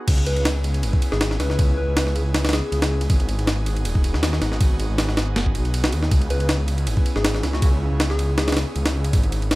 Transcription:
0.07 detuned saw bass C#2, analog synth pad B3 C#4 E4 G#4, kick, crash, ride
0.18 ride
0.26 soft synth lead B4, ride
0.36 ride
0.45 snare, ride
0.64 ride
0.74 ride
0.83 detuned saw bass G#1, ride
0.93 kick
1.02 ride
1.12 detuned saw bass G#1, soft synth lead G#4, snare
1.21 snare, ride
1.31 snare
1.40 detuned saw bass C#2, soft synth lead B4, snare, ride
1.50 detuned saw bass C#2, snare
1.59 kick, ride
1.77 soft synth lead B4
1.88 detuned saw bass C#2
1.97 snare, ride
2.07 snare
2.16 ride
2.34 snare, ride
2.45 snare, ride
2.49 snare, ride
2.53 soft synth lead G#4, snare, ride
2.72 detuned saw bass C#2, ride
2.82 snare, ride
3.01 ride
3.10 detuned saw bass G#1, analog synth pad D#4 F#4, kick, ride
3.20 ride
3.29 ride
3.39 ride
3.47 snare, ride
3.66 ride
3.76 ride
3.85 detuned saw bass D#1, ride
3.95 kick
4.04 ride
4.14 detuned saw bass D#2, snare
4.23 snare, ride
4.33 snare
4.42 detuned saw bass G#1, snare, ride
4.52 detuned saw bass G#1, snare
4.61 kick, ride
4.80 ride
4.90 detuned saw bass G#1
4.98 snare, ride
5.09 snare
5.17 snare, ride
5.36 detuned saw bass F#1, snare, ride
5.46 kick
5.55 detuned saw bass B1, ride
5.65 ride
5.74 ride
5.84 snare
5.92 detuned saw bass D#2, ride
6.03 snare
6.11 detuned saw bass C#2, analog synth pad C#4 E4, kick, ride
6.21 ride
6.30 soft synth lead B4, ride
6.40 ride
6.49 snare, ride
6.68 ride
6.78 ride
6.87 detuned saw bass G#1, ride
6.97 kick
7.06 ride
7.16 detuned saw bass G#1, soft synth lead G#4, snare
7.25 snare, ride
7.35 snare
7.43 detuned saw bass C#2, snare, ride
7.53 detuned saw bass C#2, soft synth lead F#4, snare
7.62 soft synth lead F#4, kick, ride
7.91 detuned saw bass C#2
8.00 snare, ride
8.10 soft synth lead G#4, snare
8.19 ride
8.38 soft synth lead G#4, snare, ride
8.48 snare, ride
8.52 snare, ride
8.57 snare, ride
8.76 detuned saw bass C#2, ride
8.86 snare, ride
9.04 ride
9.13 detuned saw bass G#1, analog synth pad B3 D#4 F#4 G#4, kick, ride
9.23 ride
9.32 ride
9.42 ride
9.51 snare, ride

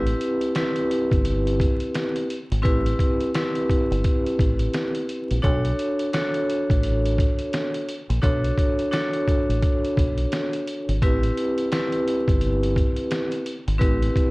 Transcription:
Already playing: fingered electric bass A1, vibraphone C4 E4 G4 B4
0.07 closed hi-hat
0.21 closed hi-hat
0.41 closed hi-hat
0.55 vibraphone C4 E4 G4 B4, snare, closed hi-hat
0.76 closed hi-hat
0.91 closed hi-hat
1.12 fingered electric bass G1, kick, closed hi-hat
1.25 closed hi-hat
1.47 closed hi-hat
1.60 kick, closed hi-hat
1.80 closed hi-hat
1.95 snare, closed hi-hat
2.16 closed hi-hat
2.30 closed hi-hat
2.51 fingered electric bass G#1, closed hi-hat
2.62 fingered electric bass A1, vibraphone C4 E4 G4 B4, kick, closed hi-hat
2.86 closed hi-hat
2.99 kick, closed hi-hat
3.20 closed hi-hat
3.34 vibraphone C4 E4 G4 B4, snare, closed hi-hat
3.55 closed hi-hat
3.69 kick, closed hi-hat
3.91 fingered electric bass G1, closed hi-hat
4.04 kick, closed hi-hat
4.26 closed hi-hat
4.39 fingered electric bass A1, kick, closed hi-hat
4.59 closed hi-hat
4.73 snare, closed hi-hat
4.95 closed hi-hat
5.09 closed hi-hat
5.30 fingered electric bass A#1, closed hi-hat
5.42 fingered electric bass B1, vibraphone D4 F#4 A4 C#5, kick, closed hi-hat
5.65 closed hi-hat
5.79 closed hi-hat
5.99 closed hi-hat
6.13 vibraphone D4 F#4 A4 C#5, snare, closed hi-hat
6.34 closed hi-hat
6.50 closed hi-hat
6.70 fingered electric bass A1, kick, closed hi-hat
6.83 closed hi-hat
7.06 closed hi-hat
7.18 kick, closed hi-hat
7.39 closed hi-hat
7.53 snare, closed hi-hat
7.74 closed hi-hat
7.88 closed hi-hat
8.09 fingered electric bass A#1, closed hi-hat
8.21 fingered electric bass B1, vibraphone D4 F#4 A4 C#5, kick, closed hi-hat
8.44 closed hi-hat
8.57 kick, closed hi-hat
8.79 closed hi-hat
8.91 vibraphone D4 F#4 A4 C#5, snare, closed hi-hat
9.13 closed hi-hat
9.28 kick, closed hi-hat
9.49 fingered electric bass A1, closed hi-hat
9.62 kick, closed hi-hat
9.85 closed hi-hat
9.97 fingered electric bass B1, kick, closed hi-hat
10.18 closed hi-hat
10.32 snare, closed hi-hat
10.53 closed hi-hat
10.67 closed hi-hat
10.88 fingered electric bass G#1, closed hi-hat
11.02 fingered electric bass A1, vibraphone C4 E4 G4 B4, kick, closed hi-hat
11.23 closed hi-hat
11.37 closed hi-hat
11.58 closed hi-hat
11.72 vibraphone C4 E4 G4 B4, snare, closed hi-hat
11.92 closed hi-hat
12.08 closed hi-hat
12.28 fingered electric bass G1, kick, closed hi-hat
12.41 closed hi-hat
12.64 closed hi-hat
12.76 kick, closed hi-hat
12.97 closed hi-hat
13.11 snare, closed hi-hat
13.32 closed hi-hat
13.46 closed hi-hat
13.68 fingered electric bass G#1, closed hi-hat
13.78 fingered electric bass A1, vibraphone C4 E4 G4 B4, kick, closed hi-hat
14.02 closed hi-hat
14.15 kick, closed hi-hat

